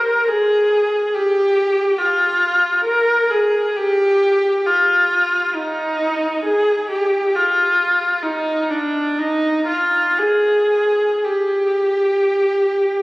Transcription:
Already playing: A#4
0.28 G#4
1.14 G4
1.98 F4
2.85 A#4
3.31 G#4
3.76 G4
4.66 F4
5.55 D#4
6.44 G#4
6.90 G4
7.35 F4
8.23 D#4
8.70 D4
9.19 D#4
9.67 F4
10.18 G#4
11.24 G4

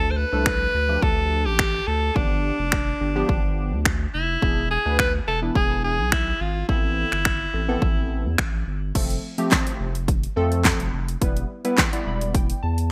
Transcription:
Already playing: D2 F3 A3 D4 A4
0.11 C5
0.17 B4
0.33 C2 F3 A3 D4 A4
0.46 finger snap, kick
0.74 D2
0.89 F3 A3 D4 G4
1.02 D2 A4, kick
1.46 A1 G4
1.59 finger snap, kick
1.87 D2 A4
2.15 G1 F3 B3 D4 G4, kick
2.59 F1
2.72 finger snap, kick
3.01 G1 D4 G4
3.16 F3 B3 D4 G4
3.29 G1, kick
3.72 D2
3.85 finger snap, kick
4.14 F1 E4
4.42 E1 E3 B3 D4 G#4, kick
4.71 G#4
4.85 D2 E3 B3 D4 B4
4.99 B4, finger snap, kick
5.27 E1 A4
5.42 E3 B3 D4 E4
5.55 E1 G#4, kick
5.84 G#4
5.99 B1
6.12 E4, finger snap, kick
6.40 G#1 F4
6.69 A1 E3 B3 C4 E4 A4, kick
7.12 G1, finger snap
7.25 finger snap, kick
7.54 A1 C4 A4
7.68 E3 B3 C4 A4
7.82 A1, kick
8.25 E2
8.38 A1, finger snap, kick
8.67 G1
8.95 F1 F3 A3 C4 A4, kick, closed hi-hat, crash
9.10 closed hi-hat
9.38 F3 A3 C4 G4, closed hi-hat
9.51 kick, snare, clap, closed hi-hat
9.67 closed hi-hat
9.80 F1
9.95 closed hi-hat
10.08 kick, closed hi-hat
10.23 closed hi-hat
10.36 F2 F3 A3 C4 A4
10.52 closed hi-hat
10.65 kick, snare, clap, closed hi-hat
10.80 F1, closed hi-hat
10.93 F1
11.08 closed hi-hat
11.21 E1 G3 B3 E4 B4, kick, closed hi-hat
11.37 closed hi-hat
11.65 G3 B3 E4 B4, closed hi-hat
11.78 kick, snare, clap, closed hi-hat
11.93 G3 B3 E4 D5, closed hi-hat
12.06 E1 B5
12.21 closed hi-hat
12.34 G5, kick, closed hi-hat
12.50 closed hi-hat
12.63 E2 A5
12.78 closed hi-hat

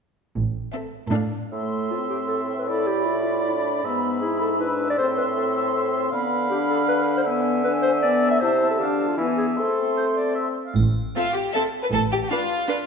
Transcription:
0.35 A1 A2
0.73 C4 A4 E5
1.11 A2 D4 A4 F5
1.51 A2 A3 E5 C6
1.91 C4 F4
2.09 G4
2.28 A4
2.58 B4
2.68 E4 A4 D5 B5
2.87 G4
3.06 F4
3.14 E4
3.22 F4
3.47 D4
3.84 G#2 B3 E5
4.21 E4 G#4
4.41 A4
4.60 D4 B4
4.90 D5
4.98 A2 C4 C5 C6
5.17 B4
5.36 A4
6.11 D3 B3 F5 B5
6.50 D4 G4
6.70 A4
6.89 B4
7.17 C5
7.26 B3 E5 G#5
7.64 D4 B4
7.82 C5
8.02 B3 D5
8.31 E5
8.40 C3 E4 C5 A5
8.70 A4
8.79 D3 D4 G4 F5
9.08 F4
9.17 E3 B3 E4 E5 G#5
9.37 G#4
9.57 A3 C4 A4 C6
9.97 C5
10.16 D5
10.35 E5
10.66 F5
10.76 A1 A2, triangle
11.16 C4 F4 A4 E5
11.34 G4
11.53 C4 A4 E5
11.83 B4
11.90 A1 A2 A4
12.12 G4
12.23 G4
12.29 D4 F4 B4 F5
12.68 D4 B4 F5

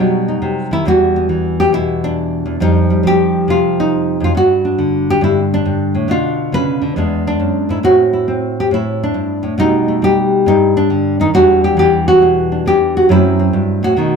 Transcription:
Already playing: B2 D#4
0.00 F#3 G3
0.28 D#4
0.42 C3
0.71 D#3 E4
0.85 E2 E3 G3 B3 F#4
1.16 B3
1.29 E3
1.60 G4
1.72 B2 E4
2.04 D4
2.46 E2
2.60 F2 F3 G3 D#4
2.90 G3
3.03 F3 G4
3.48 C3 F4
3.80 D#4
4.20 F2 F4
4.35 G2 F#4
4.65 D4
4.78 D3
5.10 G4
5.21 G2 E4
5.54 D4
5.66 G2
5.95 A2
6.08 B2 D3 D4 F4
6.52 C#3 B4
6.82 D3
6.96 E2 G#3 B3 D4
7.27 D4
7.40 F#2
7.69 G#2 E4
7.83 A2 C4 E4 F#4
8.13 E4
8.28 C4
8.60 G4
8.71 A2 E4
9.03 D4
9.14 G2
9.43 A2
9.58 B2 G3 A3 D#4
9.88 A3
10.02 G3 G4
10.46 G2 D#4
10.77 D4
10.90 D3
11.20 D#3 D#4
11.34 E2 E3 G3 D4 F#4
11.64 G4
11.77 E3 G4
12.08 F#4
12.22 B2
12.52 D4
12.66 E3 G4
12.97 F#4
13.09 F#2 F#3 A3 C4 E4
13.39 C4
13.53 G2
13.83 A2 F#4
13.96 B2 D#3 A3 D#4

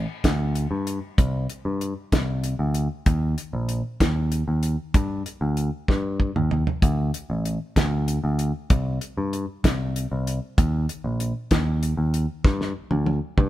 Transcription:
0.24 D2, kick, snare, closed hi-hat
0.56 closed hi-hat
0.71 G2
0.87 closed hi-hat
1.18 C2, kick, closed hi-hat
1.50 closed hi-hat
1.65 G2
1.81 closed hi-hat
2.12 C2, kick, snare, closed hi-hat
2.44 closed hi-hat
2.59 D2
2.74 closed hi-hat
3.06 D#2, kick, closed hi-hat
3.38 closed hi-hat
3.53 A#1
3.69 closed hi-hat
4.00 D#2, kick, snare, closed hi-hat
4.32 closed hi-hat
4.48 D#2
4.63 closed hi-hat
4.94 G2, kick, closed hi-hat
5.26 closed hi-hat
5.41 D2
5.57 closed hi-hat
5.88 G2, kick, snare
6.20 kick
6.36 D#2, mid tom
6.51 floor tom
6.67 floor tom
6.82 D2, kick, closed hi-hat
7.14 closed hi-hat
7.30 A1
7.45 closed hi-hat
7.76 D2, kick, snare, closed hi-hat
8.08 closed hi-hat
8.24 D2
8.39 closed hi-hat
8.70 C2, kick, closed hi-hat
9.01 closed hi-hat
9.17 G2
9.33 closed hi-hat
9.64 C2, kick, snare, closed hi-hat
9.96 closed hi-hat
10.12 C2
10.27 closed hi-hat
10.58 D#2, kick, closed hi-hat
10.89 closed hi-hat
11.04 A#1
11.20 closed hi-hat
11.51 D#2, kick, snare, closed hi-hat
11.83 closed hi-hat
11.97 D#2
12.14 closed hi-hat
12.44 G2, kick, snare
12.61 snare
12.91 D2, high tom
13.06 high tom
13.38 G2, kick, mid tom

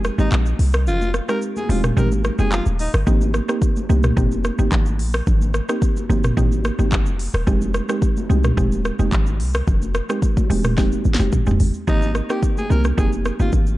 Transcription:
Already playing: F1 G#3 C4 D#4 G4
0.04 cross-stick, shaker
0.18 G#1 G#3 C4 D#4 G4, high conga, shaker
0.32 A#1, clap, low conga, shaker
0.46 high conga, shaker
0.59 C2, open hi-hat
0.73 cross-stick, shaker
0.87 F1 F4, low conga, shaker
1.01 high conga, shaker
1.14 cross-stick, shaker
1.28 G#3 C4 D#4 G4 A#4, cross-stick, shaker
1.42 shaker
1.56 G#4, high conga, shaker
1.69 D#1 G#3 C4 D#4 F4 G4, open hi-hat, high conga, low conga, shaker
1.83 cross-stick, mid tom, shaker
1.97 G#1 G#3 C4 D#4 G4 A#4, mid tom, low conga, shaker
2.12 high conga, shaker
2.24 cross-stick, shaker
2.39 F1 G#3 C4 D#4 G4 G#4, high conga, shaker
2.52 F4, clap, low conga, shaker
2.66 D#1, high conga, shaker
2.79 D#4, open hi-hat, shaker
2.93 G1, cross-stick, shaker
3.07 G#1 A#3 C4 D#4 G4, kick, low conga, shaker
3.21 high conga, shaker
3.34 cross-stick, shaker
3.48 A#3 C4 D#4 G4, cross-stick, shaker
3.62 kick, shaker
3.76 high conga, shaker
3.89 C2 A#3 C4 D#4 G4, high conga, low conga, shaker
4.03 cross-stick, mid tom, shaker
4.17 F1 A#3 C4 D#4 G4, kick, mid tom, low conga, shaker
4.32 high conga, shaker
4.44 cross-stick, shaker
4.59 G1 A#3 C4 D#4 G4, high conga, shaker
4.72 G#1, kick, clap, low conga, shaker
4.86 high conga, shaker
4.99 A#1, open hi-hat
5.13 cross-stick, shaker
5.27 G#1, kick, low conga, shaker
5.41 high conga, shaker
5.54 cross-stick, shaker
5.69 A#3 C4 D#4 G4, cross-stick, shaker
5.82 kick, shaker
5.97 high conga, shaker
6.09 G1 A#3 C4 D#4 G4, high conga, low conga, shaker
6.24 cross-stick, mid tom, shaker
6.37 G#1 A#3 C4 D#4 G4, kick, mid tom, low conga, shaker
6.52 high conga, shaker
6.64 cross-stick, shaker
6.79 G1 A#3 C4 D#4 G4, high conga, shaker
6.92 kick, clap, low conga, shaker
7.06 F1, high conga, shaker
7.19 open hi-hat
7.33 D#1, cross-stick, shaker
7.47 F1 G#3 C4 D#4 G4, kick, low conga, shaker
7.61 high conga, shaker
7.74 cross-stick, shaker
7.89 G#3 C4 D#4 G4, cross-stick, shaker
8.02 kick, shaker
8.17 high conga, shaker
8.29 C2 G#3 C4 D#4 G4, high conga, low conga, shaker
8.44 cross-stick, mid tom, shaker
8.57 D#1 G#3 C4 D#4 G4, kick, mid tom, low conga, shaker
8.72 high conga, shaker
8.85 cross-stick, shaker
8.99 F1 G#3 C4 D#4 G4, high conga, shaker
9.12 G#1, kick, clap, low conga, shaker
9.26 high conga, shaker
9.40 C2, open hi-hat
9.54 cross-stick, shaker
9.68 F1, kick, low conga, shaker
9.82 high conga, shaker
9.95 cross-stick, shaker
10.09 G#3 C4 D#4 G4, cross-stick, shaker
10.22 kick, shaker
10.37 kick, high conga, shaker
10.50 D#1 G#3 C4 D#4 G4, open hi-hat, high conga, low conga, shaker
10.64 cross-stick, mid tom, shaker
10.77 G#3 C4 D#4 G4, kick, snare, low conga, shaker
10.92 high conga, shaker
11.05 G#1, shaker
11.14 snare
11.19 F1 G#3 C4 D#4 G4, high conga, shaker
11.32 kick, mid tom, low conga, shaker
11.47 D#1 G#3 C4 D#4 G4, high conga, shaker
11.51 floor tom
11.60 G1, open hi-hat, shaker
11.74 shaker
11.87 G#1 A#3 C4 D#4 G4, kick, low conga, shaker
12.02 high conga, shaker
12.15 cross-stick, shaker
12.29 A#3 C4 D#4 G4, cross-stick, shaker
12.43 kick, shaker
12.57 G#4, high conga, shaker
12.70 C2 A#3 C4 D#4 G4 A#4, high conga, low conga, shaker
12.84 cross-stick, shaker
12.97 F1 A#3 C4 D#4 G4 G#4, kick, low conga, shaker
13.12 high conga, shaker
13.25 cross-stick, shaker
13.39 G1 A#3 C4 D#4 F4 G4, high conga, shaker
13.52 G#1, kick, low conga, shaker
13.67 high conga, shaker

